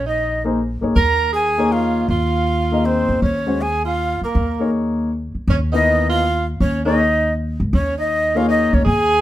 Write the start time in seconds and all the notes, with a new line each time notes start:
Already playing: A#1
0.06 D#4 D#5
0.44 A#3 D#4 G#4 C5
0.81 A#3 D#4 G#4 C#5, muted upright bass stroke
0.96 D#2 A#4 A#5
1.32 G#4 G#5
1.58 A#3 D#4 G#4 C#5
1.71 F4 F5
2.08 D#2 F4 F5
2.72 A#3 D#4 G#4 D#5
2.85 C4 C5
3.09 E2
3.22 D#2 C#4 C#5
3.46 G#3 C#4 F#4 C5
3.61 G#4 G#5
3.85 F4 F5
4.21 A#3 A#4, muted upright bass stroke
4.35 D#2
4.59 A#3 D#4 G#4 C#5
5.35 muted upright bass stroke
5.47 D#2 C#4 C#5
5.72 E3 B3 D#4 A#4 D#5
6.09 F4 F5
6.60 D#2 C#4 C#5
6.85 A#3 D#4 G#4 C#5 D#5
7.60 C#2
7.73 D#2 C#4 C#5
7.98 D#4 D#5
8.35 A#3 D#4 F4 G#4 C#5 F5
8.48 D#4 D#5
8.73 D2 C#4 C#5
8.85 D#2 G#4 G#5